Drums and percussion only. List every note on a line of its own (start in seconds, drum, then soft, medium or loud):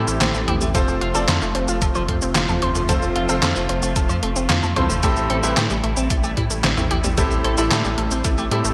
0.08 cabasa medium
0.21 snare loud
0.21 clap loud
0.21 closed hi-hat loud
0.21 cabasa soft
0.34 cabasa soft
0.48 closed hi-hat medium
0.48 mid tom medium
0.61 cabasa medium
0.75 kick loud
0.75 closed hi-hat loud
0.75 cabasa soft
0.88 cabasa soft
1.01 closed hi-hat medium
1.15 cabasa medium
1.28 snare loud
1.28 clap medium
1.28 closed hi-hat loud
1.28 cabasa soft
1.42 cabasa soft
1.55 closed hi-hat medium
1.68 cabasa medium
1.82 kick loud
1.82 closed hi-hat loud
1.82 cabasa soft
1.95 cabasa soft
2.09 kick medium
2.09 closed hi-hat medium
2.22 cabasa medium
2.35 snare loud
2.35 clap loud
2.35 closed hi-hat loud
2.35 cabasa medium
2.49 mid tom medium
2.49 cabasa soft
2.62 closed hi-hat medium
2.75 mid tom medium
2.75 cabasa medium
2.89 kick loud
2.89 closed hi-hat loud
2.89 cabasa soft
3.02 cabasa soft
3.16 closed hi-hat medium
3.29 cabasa medium
3.42 snare loud
3.42 clap medium
3.42 closed hi-hat medium
3.42 cabasa soft
3.56 cabasa soft
3.69 closed hi-hat medium
3.83 cabasa medium
3.96 kick loud
3.96 closed hi-hat medium
3.96 cabasa soft
4.09 cabasa soft
4.23 closed hi-hat medium
4.36 cabasa medium
4.50 snare loud
4.50 clap loud
4.50 closed hi-hat loud
4.50 cabasa soft
4.63 cabasa soft
4.76 closed hi-hat medium
4.76 mid tom loud
4.90 cabasa medium
5.03 kick loud
5.03 closed hi-hat medium
5.03 cabasa medium
5.16 cabasa soft
5.30 closed hi-hat medium
5.43 cabasa medium
5.57 snare loud
5.57 clap medium
5.57 closed hi-hat medium
5.57 cabasa soft
5.70 cabasa soft
5.84 closed hi-hat medium
5.97 cabasa medium
6.10 kick loud
6.10 closed hi-hat medium
6.10 cabasa medium
6.24 cabasa soft
6.37 kick medium
6.37 closed hi-hat medium
6.51 cabasa medium
6.64 snare loud
6.64 clap medium
6.64 closed hi-hat medium
6.64 cabasa medium
6.77 mid tom loud
6.77 cabasa soft
6.91 closed hi-hat medium
7.04 mid tom medium
7.04 cabasa medium
7.18 kick loud
7.18 closed hi-hat medium
7.18 cabasa medium
7.31 cabasa soft
7.44 closed hi-hat medium
7.58 cabasa medium
7.71 snare loud
7.71 clap medium
7.71 closed hi-hat medium
7.71 cabasa soft
7.85 cabasa soft
7.98 closed hi-hat medium
8.11 cabasa medium
8.24 kick loud
8.24 closed hi-hat medium
8.24 cabasa medium
8.38 cabasa soft
8.51 closed hi-hat medium
8.65 cabasa medium